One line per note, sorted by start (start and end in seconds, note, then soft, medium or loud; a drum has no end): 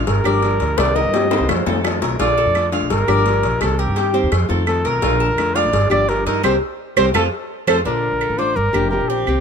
0.00 0.24 F5 medium
0.07 0.24 G1 loud
0.07 0.80 A#4 medium
0.07 muted nylon-string guitar stroke medium
0.07 cowbell loud
0.24 0.59 G1 medium
0.24 0.41 F3 medium
0.24 0.42 A#3 medium
0.24 0.42 D4 medium
0.24 0.41 G4 medium
0.24 0.59 D5 medium
0.24 claves medium
0.42 0.77 F3 soft
0.42 0.77 A#3 medium
0.42 0.78 D4 medium
0.42 0.78 G4 medium
0.42 cowbell medium
0.60 0.77 D2 medium
0.60 cowbell medium
0.77 1.03 C2 loud
0.77 1.12 C3 medium
0.77 1.12 D#3 medium
0.77 1.13 A#3 medium
0.77 1.13 C4 medium
0.77 1.13 G4 medium
0.77 0.97 D5 loud
0.77 cowbell loud
0.77 high bongo loud
0.77 claves medium
0.96 1.13 A#4 medium
0.96 1.49 D#5 loud
0.96 high bongo medium
1.05 1.38 G2 medium
1.13 1.30 D#3 medium
1.13 1.31 A#3 medium
1.13 1.30 C4 medium
1.13 1.31 G4 medium
1.13 1.30 G4 medium
1.13 cowbell medium
1.13 low bongo medium
1.31 1.48 D#3 medium
1.31 1.49 A#3 medium
1.31 1.48 C4 medium
1.31 1.48 G4 medium
1.31 1.66 C5 medium
1.31 high bongo loud
1.40 1.48 C2 medium
1.49 1.66 F2 loud
1.49 muted nylon-string guitar stroke medium
1.49 cowbell loud
1.49 low bongo loud
1.49 claves medium
1.66 2.00 F2 medium
1.66 1.83 D#3 medium
1.66 1.83 A3 medium
1.66 1.84 C4 medium
1.66 1.83 F4 medium
1.66 2.01 A4 medium
1.66 low bongo medium
1.84 2.19 D#3 medium
1.84 2.19 A3 medium
1.84 2.19 C4 soft
1.84 2.20 F4 medium
1.84 cowbell medium
1.84 low bongo medium
1.84 claves medium
2.02 2.18 B1 medium
2.02 2.19 A#4 medium
2.02 cowbell medium
2.02 low bongo medium
2.19 2.45 A#1 loud
2.19 2.53 D3 medium
2.19 2.54 A3 medium
2.19 2.55 D4 medium
2.19 2.37 F4 medium
2.19 2.55 F4 medium
2.19 2.70 D5 loud
2.19 cowbell loud
2.38 2.72 A4 medium
2.46 2.80 F2 medium
2.55 2.72 D3 medium
2.55 2.72 A3 soft
2.55 2.72 D4 medium
2.55 2.71 F4 medium
2.55 cowbell medium
2.55 claves medium
2.72 2.90 A3 medium
2.72 2.90 D4 medium
2.72 2.89 F4 medium
2.72 3.07 F5 medium
2.72 cowbell medium
2.81 2.90 A#1 medium
2.90 3.07 G1 loud
2.90 3.58 A#4 loud
2.90 muted nylon-string guitar stroke medium
2.90 cowbell loud
3.08 3.42 G1 loud
3.08 3.24 F3 medium
3.08 3.25 A#3 medium
3.08 3.25 D4 medium
3.08 3.25 G4 medium
3.08 3.42 D5 medium
3.08 claves medium
3.25 3.60 F3 soft
3.25 3.61 A#3 medium
3.25 3.61 D4 medium
3.25 3.61 G4 medium
3.25 cowbell medium
3.43 3.60 A#1 medium
3.43 cowbell medium
3.61 3.86 C2 loud
3.61 3.96 C3 medium
3.61 3.95 D#3 medium
3.61 3.96 A#3 medium
3.61 3.96 C4 medium
3.61 3.97 G4 medium
3.61 3.81 A4 medium
3.61 cowbell loud
3.61 claves medium
3.79 4.32 G4 medium
3.79 3.96 A#4 medium
3.88 4.21 G2 medium
3.96 4.13 D#3 medium
3.96 4.14 A#3 medium
3.96 4.13 C4 medium
3.96 4.14 G4 medium
3.96 4.12 G4 medium
3.96 cowbell medium
4.14 4.31 D#3 medium
4.14 4.32 A#3 medium
4.14 4.31 C4 medium
4.14 4.31 G4 medium
4.14 4.48 C5 medium
4.23 4.31 D#2 medium
4.32 4.49 F2 loud
4.32 muted nylon-string guitar stroke medium
4.32 cowbell loud
4.32 claves medium
4.49 4.83 F2 medium
4.49 4.65 D#3 medium
4.49 4.66 A3 medium
4.49 4.66 C4 medium
4.49 4.66 F4 medium
4.49 4.84 A4 medium
4.66 5.01 D#3 medium
4.66 5.02 A3 medium
4.66 5.02 C4 medium
4.66 5.02 F4 medium
4.66 4.88 A4 loud
4.66 cowbell medium
4.66 claves medium
4.85 5.02 B1 medium
4.85 5.02 A#4 medium
4.85 5.58 A#4 loud
4.85 cowbell medium
5.01 5.28 A#1 loud
5.01 5.36 D3 medium
5.01 5.37 D4 medium
5.01 5.20 F4 medium
5.01 5.38 F4 medium
5.01 cowbell loud
5.20 5.55 A5 medium
5.29 5.63 F2 medium
5.37 5.55 D3 medium
5.37 5.55 A3 medium
5.37 5.55 D4 medium
5.37 5.54 F4 medium
5.37 cowbell medium
5.37 claves medium
5.55 5.73 A3 medium
5.55 5.72 D4 medium
5.55 5.72 F4 medium
5.55 5.91 D5 loud
5.55 5.90 F5 medium
5.55 cowbell medium
5.64 5.72 A1 medium
5.73 5.90 G1 loud
5.73 muted nylon-string guitar stroke medium
5.73 cowbell loud
5.90 6.25 G1 medium
5.90 6.07 F3 medium
5.90 6.08 A#3 medium
5.90 6.08 D4 medium
5.90 6.07 G4 medium
5.90 6.25 D5 medium
5.90 6.10 D5 loud
5.90 claves medium
6.08 6.43 F3 medium
6.08 6.42 A#3 medium
6.08 6.43 D4 medium
6.08 6.44 G4 medium
6.08 6.27 A#4 loud
6.08 cowbell medium
6.26 6.43 G2 medium
6.26 6.43 D#4 loud
6.26 6.43 A#4 medium
6.26 cowbell medium
6.43 6.57 C2 loud
6.43 6.55 G3 medium
6.43 6.55 A#3 loud
6.43 6.55 C4 loud
6.43 6.55 G4 loud
6.43 6.55 A#4 medium
6.43 6.53 C5 medium
6.43 6.55 C5 medium
6.43 cowbell loud
6.43 claves medium
6.97 7.10 C2 loud
6.97 7.08 G3 loud
6.97 7.08 A#3 loud
6.97 7.08 C4 loud
6.97 7.08 G4 medium
6.97 7.08 A#4 medium
6.97 7.08 C5 loud
6.97 7.06 C5 loud
6.97 cowbell loud
6.97 claves loud
7.14 7.28 F2 loud
7.14 7.26 F3 loud
7.14 7.26 A3 loud
7.14 7.26 C4 loud
7.14 7.26 F4 loud
7.14 7.26 A4 loud
7.14 7.23 A4 loud
7.14 7.26 C5 medium
7.14 cowbell loud
7.14 claves loud
7.67 7.81 F2 loud
7.67 7.79 F3 loud
7.67 7.79 A3 loud
7.67 7.79 C4 medium
7.67 7.79 F4 medium
7.67 7.79 A4 loud
7.67 7.77 A4 medium
7.67 7.79 C5 loud
7.67 cowbell loud
7.67 claves loud
7.85 8.11 A#1 loud
7.85 8.38 D3 medium
7.85 8.20 D4 medium
7.85 8.38 D4 medium
7.85 8.37 F4 medium
7.85 8.40 A#4 loud
8.12 8.29 A#1 medium
8.21 8.38 A4 medium
8.21 claves medium
8.29 8.55 A1 medium
8.38 8.56 A3 medium
8.38 8.55 D4 medium
8.38 8.55 F4 medium
8.38 8.57 C5 loud
8.38 8.73 D5 medium
8.56 8.73 G1 loud
8.56 8.90 A#4 loud
8.56 muted nylon-string guitar stroke medium
8.73 8.99 F1 loud
8.73 8.90 F3 medium
8.73 8.91 A#3 medium
8.73 8.91 D4 medium
8.73 8.91 G4 medium
8.73 9.09 G4 medium
8.73 claves medium
8.91 9.26 F3 soft
8.91 9.27 A#3 medium
8.91 9.27 D4 medium
8.91 9.27 G4 medium
8.91 9.10 A#4 medium
9.00 9.26 A#1 medium
9.09 9.40 C4 medium
9.09 9.40 G4 medium
9.27 9.40 C2 medium
9.27 9.40 C3 medium
9.27 9.40 D#3 medium
9.27 9.40 A#3 medium
9.27 9.40 C4 medium
9.27 9.40 G4 medium
9.27 claves medium